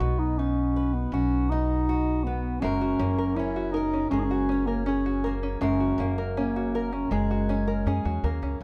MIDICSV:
0, 0, Header, 1, 5, 480
1, 0, Start_track
1, 0, Tempo, 749064
1, 1678, Time_signature, 4, 2, 24, 8
1, 5533, End_track
2, 0, Start_track
2, 0, Title_t, "Five-string banjo"
2, 0, Program_c, 0, 105
2, 1679, Note_on_c, 0, 56, 83
2, 1803, Note_on_c, 0, 66, 47
2, 1918, Note_on_c, 0, 61, 55
2, 2041, Note_on_c, 0, 70, 62
2, 2148, Note_off_c, 0, 61, 0
2, 2156, Note_on_c, 0, 61, 57
2, 2279, Note_off_c, 0, 66, 0
2, 2282, Note_on_c, 0, 66, 50
2, 2388, Note_off_c, 0, 70, 0
2, 2396, Note_on_c, 0, 70, 65
2, 2514, Note_off_c, 0, 61, 0
2, 2521, Note_on_c, 0, 61, 46
2, 2630, Note_off_c, 0, 56, 0
2, 2638, Note_on_c, 0, 56, 72
2, 2757, Note_off_c, 0, 66, 0
2, 2760, Note_on_c, 0, 66, 59
2, 2869, Note_off_c, 0, 61, 0
2, 2877, Note_on_c, 0, 61, 57
2, 2987, Note_off_c, 0, 70, 0
2, 2995, Note_on_c, 0, 70, 55
2, 3107, Note_off_c, 0, 61, 0
2, 3115, Note_on_c, 0, 61, 62
2, 3239, Note_off_c, 0, 66, 0
2, 3242, Note_on_c, 0, 66, 51
2, 3350, Note_off_c, 0, 70, 0
2, 3358, Note_on_c, 0, 70, 56
2, 3471, Note_off_c, 0, 61, 0
2, 3479, Note_on_c, 0, 61, 56
2, 3590, Note_off_c, 0, 56, 0
2, 3598, Note_on_c, 0, 56, 80
2, 3711, Note_off_c, 0, 66, 0
2, 3718, Note_on_c, 0, 66, 49
2, 3831, Note_off_c, 0, 61, 0
2, 3839, Note_on_c, 0, 61, 57
2, 3953, Note_off_c, 0, 70, 0
2, 3961, Note_on_c, 0, 70, 62
2, 4076, Note_off_c, 0, 61, 0
2, 4083, Note_on_c, 0, 61, 63
2, 4198, Note_off_c, 0, 66, 0
2, 4205, Note_on_c, 0, 66, 51
2, 4318, Note_off_c, 0, 70, 0
2, 4326, Note_on_c, 0, 70, 59
2, 4430, Note_off_c, 0, 61, 0
2, 4438, Note_on_c, 0, 61, 47
2, 4553, Note_off_c, 0, 56, 0
2, 4561, Note_on_c, 0, 56, 74
2, 4674, Note_off_c, 0, 66, 0
2, 4682, Note_on_c, 0, 66, 59
2, 4794, Note_off_c, 0, 61, 0
2, 4801, Note_on_c, 0, 61, 56
2, 4911, Note_off_c, 0, 70, 0
2, 4919, Note_on_c, 0, 70, 58
2, 5034, Note_off_c, 0, 61, 0
2, 5041, Note_on_c, 0, 61, 60
2, 5153, Note_off_c, 0, 66, 0
2, 5161, Note_on_c, 0, 66, 55
2, 5273, Note_off_c, 0, 70, 0
2, 5281, Note_on_c, 0, 70, 54
2, 5392, Note_off_c, 0, 61, 0
2, 5400, Note_on_c, 0, 61, 51
2, 5533, Note_off_c, 0, 56, 0
2, 5533, Note_off_c, 0, 61, 0
2, 5533, Note_off_c, 0, 66, 0
2, 5533, Note_off_c, 0, 70, 0
2, 5533, End_track
3, 0, Start_track
3, 0, Title_t, "Steel-string acoustic guitar"
3, 0, Program_c, 1, 25
3, 0, Note_on_c, 1, 47, 57
3, 0, Note_on_c, 1, 63, 51
3, 0, Note_on_c, 1, 66, 65
3, 8, Note_on_c, 1, 59, 51
3, 243, Note_off_c, 1, 63, 0
3, 250, Note_on_c, 1, 63, 47
3, 489, Note_on_c, 1, 71, 54
3, 725, Note_off_c, 1, 66, 0
3, 728, Note_on_c, 1, 66, 61
3, 964, Note_off_c, 1, 63, 0
3, 973, Note_on_c, 1, 63, 55
3, 1208, Note_off_c, 1, 66, 0
3, 1211, Note_on_c, 1, 66, 57
3, 1442, Note_off_c, 1, 59, 0
3, 1453, Note_on_c, 1, 59, 55
3, 1654, Note_off_c, 1, 71, 0
3, 1656, Note_off_c, 1, 59, 0
3, 1656, Note_off_c, 1, 63, 0
3, 1681, Note_on_c, 1, 42, 66
3, 1682, Note_off_c, 1, 47, 0
3, 1690, Note_on_c, 1, 70, 67
3, 1928, Note_on_c, 1, 58, 55
3, 2175, Note_on_c, 1, 61, 51
3, 2410, Note_off_c, 1, 70, 0
3, 2413, Note_on_c, 1, 70, 60
3, 2646, Note_off_c, 1, 66, 0
3, 2648, Note_on_c, 1, 68, 61
3, 2886, Note_off_c, 1, 61, 0
3, 2893, Note_on_c, 1, 61, 54
3, 3121, Note_off_c, 1, 68, 0
3, 3129, Note_on_c, 1, 68, 57
3, 3363, Note_off_c, 1, 58, 0
3, 3370, Note_on_c, 1, 58, 56
3, 3575, Note_off_c, 1, 58, 0
3, 3575, Note_off_c, 1, 68, 0
3, 3577, Note_off_c, 1, 61, 0
3, 3577, Note_off_c, 1, 70, 0
3, 3598, Note_off_c, 1, 42, 0
3, 3604, Note_on_c, 1, 42, 66
3, 3608, Note_on_c, 1, 70, 60
3, 3844, Note_on_c, 1, 58, 60
3, 4084, Note_on_c, 1, 61, 53
3, 4315, Note_off_c, 1, 70, 0
3, 4323, Note_on_c, 1, 70, 52
3, 4564, Note_on_c, 1, 68, 62
3, 4797, Note_off_c, 1, 61, 0
3, 4805, Note_on_c, 1, 61, 56
3, 5038, Note_off_c, 1, 68, 0
3, 5046, Note_on_c, 1, 68, 51
3, 5274, Note_off_c, 1, 58, 0
3, 5281, Note_on_c, 1, 58, 55
3, 5492, Note_off_c, 1, 58, 0
3, 5493, Note_off_c, 1, 70, 0
3, 5494, Note_off_c, 1, 61, 0
3, 5494, Note_off_c, 1, 68, 0
3, 5523, Note_off_c, 1, 42, 0
3, 5533, End_track
4, 0, Start_track
4, 0, Title_t, "Bass clarinet"
4, 0, Program_c, 2, 71
4, 0, Note_on_c, 2, 66, 99
4, 122, Note_on_c, 2, 63, 84
4, 132, Note_off_c, 2, 66, 0
4, 244, Note_on_c, 2, 61, 87
4, 254, Note_off_c, 2, 63, 0
4, 599, Note_on_c, 2, 59, 76
4, 609, Note_off_c, 2, 61, 0
4, 718, Note_off_c, 2, 59, 0
4, 722, Note_on_c, 2, 61, 92
4, 956, Note_on_c, 2, 63, 93
4, 966, Note_off_c, 2, 61, 0
4, 1433, Note_on_c, 2, 59, 76
4, 1442, Note_off_c, 2, 63, 0
4, 1665, Note_on_c, 2, 61, 85
4, 1675, Note_off_c, 2, 59, 0
4, 2151, Note_on_c, 2, 64, 92
4, 2161, Note_off_c, 2, 61, 0
4, 2387, Note_on_c, 2, 63, 86
4, 2397, Note_off_c, 2, 64, 0
4, 2620, Note_off_c, 2, 63, 0
4, 2624, Note_on_c, 2, 61, 95
4, 2684, Note_on_c, 2, 63, 69
4, 2694, Note_off_c, 2, 61, 0
4, 2713, Note_on_c, 2, 61, 87
4, 2723, Note_off_c, 2, 63, 0
4, 2986, Note_on_c, 2, 58, 75
4, 2995, Note_off_c, 2, 61, 0
4, 3107, Note_off_c, 2, 58, 0
4, 3111, Note_on_c, 2, 61, 80
4, 3449, Note_off_c, 2, 61, 0
4, 3593, Note_on_c, 2, 61, 90
4, 3930, Note_off_c, 2, 61, 0
4, 4077, Note_on_c, 2, 58, 75
4, 4439, Note_on_c, 2, 61, 74
4, 4448, Note_off_c, 2, 58, 0
4, 4554, Note_on_c, 2, 56, 73
4, 4563, Note_off_c, 2, 61, 0
4, 5277, Note_off_c, 2, 56, 0
4, 5533, End_track
5, 0, Start_track
5, 0, Title_t, "Upright bass"
5, 0, Program_c, 3, 32
5, 3, Note_on_c, 3, 35, 86
5, 694, Note_off_c, 3, 35, 0
5, 717, Note_on_c, 3, 35, 81
5, 1652, Note_off_c, 3, 35, 0
5, 1681, Note_on_c, 3, 30, 79
5, 1907, Note_off_c, 3, 30, 0
5, 1919, Note_on_c, 3, 30, 88
5, 2613, Note_off_c, 3, 30, 0
5, 2634, Note_on_c, 3, 30, 82
5, 3570, Note_off_c, 3, 30, 0
5, 3594, Note_on_c, 3, 30, 85
5, 3824, Note_off_c, 3, 30, 0
5, 3831, Note_on_c, 3, 30, 85
5, 4529, Note_off_c, 3, 30, 0
5, 4556, Note_on_c, 3, 30, 78
5, 5013, Note_off_c, 3, 30, 0
5, 5038, Note_on_c, 3, 42, 65
5, 5146, Note_off_c, 3, 42, 0
5, 5160, Note_on_c, 3, 40, 72
5, 5267, Note_off_c, 3, 40, 0
5, 5278, Note_on_c, 3, 39, 73
5, 5387, Note_off_c, 3, 39, 0
5, 5397, Note_on_c, 3, 37, 72
5, 5506, Note_off_c, 3, 37, 0
5, 5533, End_track
0, 0, End_of_file